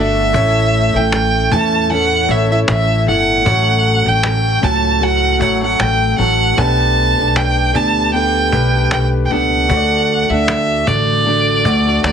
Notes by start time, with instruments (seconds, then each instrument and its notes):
Already playing: upright bass G1, steel-string acoustic guitar D3 A3 D4 F#4 A4, grand piano A3 F#4 D5, violin E5
0.33 upright bass A1, grand piano A3 E4 C#5, steel-string acoustic guitar A3 C#4 E4, cajon bass
0.37 steel-string acoustic guitar A4
0.94 upright bass A1, steel-string acoustic guitar A3 C#4 E4 A4, violin G5
1.12 cajon slap
1.51 upright bass E2, steel-string acoustic guitar A2 E3 A3 C#4 E4 A4, violin A5, cajon bass
1.90 steel-string acoustic guitar A2 E3 A3 C#4 E4 A4, violin F#5
2.28 upright bass A1, grand piano A3 E4 C#5, violin E5
2.50 steel-string acoustic guitar A3 C#4 E4 A4, violin E5
2.68 upright bass A1, violin E5, cajon slap
3.06 upright bass G1, steel-string acoustic guitar A2 E3 A3 C#4 E4 A4, violin F#5
3.45 upright bass A1, grand piano F#3 A3 C#5, steel-string acoustic guitar A3 C#4 F#4 A4, cajon bass
4.05 upright bass A1, steel-string acoustic guitar A3 C#4 A4, violin G5
4.23 cajon slap
4.62 upright bass C#2, steel-string acoustic guitar A2 F#3 A3 C#4 F#4 A4, violin A5, cajon bass
5.01 steel-string acoustic guitar A2 F#3 A3 C#4 F#4 A4, violin F#5
5.23 cajon slap
5.39 upright bass A1, grand piano F#3 A3 C#5, violin F#5, cajon bass
5.60 steel-string acoustic guitar A3 C#4 A4, violin F#5, cajon slap
5.80 upright bass A1, violin G5, cajon slap
6.18 upright bass A1, steel-string acoustic guitar A2 F#3 A3 C#4 F#4 A4, violin F#5
6.56 upright bass B1, grand piano A3 G4 B4, steel-string acoustic guitar B3 D4 G4 A4, violin A5, cajon bass
7.16 upright bass B1, steel-string acoustic guitar D4 G4 A4
7.36 violin G5, cajon slap
7.73 upright bass D2, steel-string acoustic guitar B3 D4 G4 A4, violin A5, cajon bass
8.13 steel-string acoustic guitar B3 D4 G4 A4, violin G5
8.35 cajon slap
8.52 upright bass B1, grand piano A3 G4 B4, cajon bass
8.74 steel-string acoustic guitar D4 G4 A4, cajon slap
8.91 upright bass B1, violin G5, cajon slap
9.25 violin G5
9.31 upright bass C#2, steel-string acoustic guitar B3 D4 G4 A4, violin F#5
9.52 cajon slap
9.68 upright bass D2, grand piano A3 F#4 C#5, steel-string acoustic guitar A3 D4 F#4 A4, cajon bass
9.77 grand piano D5
10.10 cajon slap
10.23 violin F#5
10.30 upright bass D2, steel-string acoustic guitar D4 F#4 A4, violin E5
10.48 cajon slap
10.87 upright bass A1, steel-string acoustic guitar D3 A3 D4 F#4 A4, violin D5, cajon bass
11.26 steel-string acoustic guitar D3 A3 D4 F#4 A4
11.48 cajon slap
11.64 upright bass D2, grand piano A3 F#4 D5, cajon bass
11.86 steel-string acoustic guitar D4 F#4 A4
12.03 upright bass D2, violin D5, cajon slap